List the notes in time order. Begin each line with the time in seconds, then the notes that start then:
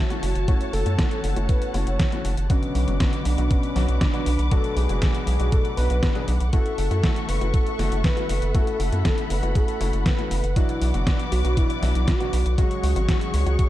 Already playing: F#4 C#5 E5 A5
0.10 A3 C#4 E4 F#4, closed hi-hat
0.23 F#1, open hi-hat
0.35 F#1, closed hi-hat
0.48 A3 C#4 E4 F#4 C#5 F#5, kick, closed hi-hat
0.61 closed hi-hat
0.73 F#1 A4, open hi-hat
0.86 F#2 A3 C#4 E4 F#4, closed hi-hat
0.99 kick, snare, closed hi-hat
1.11 closed hi-hat
1.24 F#1, open hi-hat
1.36 F#1 A3 C#4 E4 F#4, closed hi-hat
1.49 B4, kick, closed hi-hat
1.62 closed hi-hat
1.74 F#1 A3 C#4 E4 F#4 C#5, open hi-hat
1.87 F#1, closed hi-hat
1.99 kick, snare, closed hi-hat
2.12 A3 C#4 E4 F#4, closed hi-hat
2.25 F#1, open hi-hat
2.37 F#1, closed hi-hat
2.50 B2 D3 F#3 B3 C#4 F#4 B4 F#5 D6, kick, closed hi-hat
2.63 closed hi-hat
2.75 B1, open hi-hat
2.88 F#1 B2 D3 F#3 B3 F#4, closed hi-hat
3.00 kick, snare, closed hi-hat
3.13 closed hi-hat
3.25 B1 D4, open hi-hat
3.38 B1 B2 F#3 B3 D4 F#4, closed hi-hat
3.50 C#4, kick, closed hi-hat
3.63 closed hi-hat
3.76 B1 B2 F#3 B3 D4 F#4, snare, open hi-hat
3.88 B1, closed hi-hat
4.01 D4, kick, snare, closed hi-hat
4.14 B2 F#3 B3 D4 F#4, closed hi-hat
4.26 B1, open hi-hat
4.39 B1, closed hi-hat
4.51 B2 F#3 B3 D4 F#4 A4, kick, closed hi-hat
4.64 closed hi-hat
4.76 B1 G#4, open hi-hat
4.89 F#1 B2 F#3 B3 D4 F#4, closed hi-hat
5.02 kick, snare, closed hi-hat
5.14 closed hi-hat
5.27 B1 G#4, open hi-hat
5.40 B1 B2 F#3 B3 D4 F#4, closed hi-hat
5.52 A4, kick, closed hi-hat
5.65 closed hi-hat
5.77 B1 B2 F#3 B3 D4 F#4 B4, open hi-hat
5.90 B1 B2 F#3 B3 D4 F#4, closed hi-hat
6.03 kick, snare, closed hi-hat
6.15 B2 F#3 B3 D4 G#4, closed hi-hat
6.28 B1, open hi-hat
6.41 B1, closed hi-hat
6.53 A3 C#4 E4 F#4 A4 E5 C#6, kick, closed hi-hat
6.66 closed hi-hat
6.78 F#1, open hi-hat
6.91 F#2 A3 C#4 E4 F#4, closed hi-hat
7.04 kick, snare, closed hi-hat
7.16 closed hi-hat
7.28 F#1 B4, open hi-hat
7.41 F#1 A3 C#4 E4 F#4, closed hi-hat
7.54 A4, kick, closed hi-hat
7.67 closed hi-hat
7.79 F#1 A3 C#4 E4 F#4, snare, open hi-hat
7.92 F#1, closed hi-hat
8.04 B4, kick, snare, closed hi-hat
8.17 A3 C#4 E4 F#4, closed hi-hat
8.29 F#1, open hi-hat
8.42 F#1, closed hi-hat
8.55 A3 C#4 E4 F#4 A4 B5, kick, closed hi-hat
8.67 closed hi-hat
8.80 F#1, open hi-hat
8.92 F#2 A3 C#4 E4 F#4, closed hi-hat
9.05 kick, snare, closed hi-hat
9.18 closed hi-hat
9.30 F#1 B4, open hi-hat
9.43 F#1 A3 C#4 E4 F#4, closed hi-hat
9.55 A4, kick, closed hi-hat
9.68 closed hi-hat
9.81 F#1 A3 C#4 E4 F#4, open hi-hat
9.93 F#1, closed hi-hat
10.06 B4, kick, snare, closed hi-hat
10.18 A3 C#4 E4 F#4, closed hi-hat
10.31 F#1, open hi-hat
10.44 F#1, closed hi-hat
10.56 B2 F#3 B3 D4 E4 F#4 B4 D5 D6, kick, closed hi-hat
10.69 closed hi-hat
10.81 B1, open hi-hat
10.94 F#1 B2 F#3 B3 D4 F#4, closed hi-hat
11.07 kick, snare, closed hi-hat
11.19 closed hi-hat
11.32 B1 F#4, open hi-hat
11.45 B1 B2 F#3 B3 D4 F#4, closed hi-hat
11.57 E4, kick, closed hi-hat
11.70 closed hi-hat
11.82 B1 B2 F#3 B3 D4 F#4, snare, open hi-hat
11.95 B1, closed hi-hat
12.08 F#4, kick, snare, closed hi-hat
12.20 B2 F#3 B3 D4 F#4, closed hi-hat
12.33 B1, open hi-hat
12.46 B1, closed hi-hat
12.58 C#3 F#3 G#3 C#4 F#4 G#4 C#5 C#6, kick, closed hi-hat
12.71 closed hi-hat
12.83 C#2, open hi-hat
12.96 G#1 C#3 F#3 G#3 C#4 F#4, closed hi-hat
13.09 kick, snare, closed hi-hat
13.21 closed hi-hat
13.34 C#2, open hi-hat
13.46 C#2 C#3 F#3 G#3 C#4 F#4, closed hi-hat
13.59 kick, closed hi-hat